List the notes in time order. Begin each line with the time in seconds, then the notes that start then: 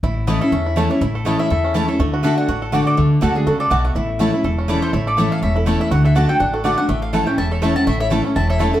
0.03 A1 A2 E4
0.27 E3 A3 C#4 E4 C#5 D#5 A5
0.41 C#4 E4 A4 E5
0.52 E2 C#4
0.66 E4
0.76 E3 A3 C#4 E4 C#5 A5
0.90 C#4 E4 C#5
1.01 A1 A2 E4
1.15 A4
1.25 E3 A3 C#4 E4 C#5 D#5 A5
1.39 E4 E5
1.50 E2 A4
1.64 C#4
1.74 E3 A3 C#4 E4 C#5 A5
1.88 C#4 E4 A4 C#5
1.99 D2 D3 A3
2.14 F#4
2.23 D3 A3 D4 F#4 A4 D5 E5 A5
2.38 D4 F#5
2.48 A1 A2 F#4
2.62 A4
2.72 D3 A3 D4 F#4 D5 A5
2.87 A4 D5
2.97 D2 D3 A3
3.21 D2 D3 A3 D4 F#4 A4 D5 A5
3.35 D4 F#4 G#4
3.47 C#2 C#3 F#4 A4
3.60 A4 D5
3.70 B1 B2 A3 F#4 D5 F#5 A5
3.85 F#4 E5
3.95 A1 A2 E4
4.19 E3 A3 C#4 E4 C#5 A5
4.32 C#4 E4
4.44 E1 E2 A4
4.58 C#4
4.68 E3 A3 C#4 E4 C#5 D5 A5
4.82 A4 C5
4.93 A1 A2 E4 C#5
5.07 A4 D5
5.17 E3 A3 C#4 E4 C#5 E5 A5
5.31 A4 F5
5.42 E1 E2 C#4 E5
5.56 E4 A4
5.66 E3 A3 C#4 E4 C#5 A5
5.81 E4 E5
5.91 D2 D3 F#4 F#5
6.05 A4 E5
6.15 D3 A3 D4 F#4 D5 F#5 A5
6.29 D4 F#4 A4 G5
6.40 A1 A2 D4 F#5
6.53 F#4 A4
6.64 D3 A3 D4 F#4 D5 A5
6.77 D4 F#4 F#5
6.88 A1 A2 A3 E5
7.02 F5
7.13 E3 A3 C#4 E4 A4 C#5 F#5 A5
7.26 C#4 E4 G5
7.38 E1 E2 E4 E5 A5
7.51 A4 C#5
7.62 E3 A3 C#4 E4 C#5 E5 A5
7.76 C#4 E4 F#5 A5
7.87 A1 A2 A3 E5 B5
8.00 E4 C#5 E5
8.10 E3 A3 C#4 E4 A4 C#5 A5
8.24 C#4 E4
8.35 E1 E2 E4 E5 A5
8.50 A4 C#5 E5
8.59 E3 A3 C#4 E4 A4 C#5 A5
8.73 C#4 E4 F#4 A4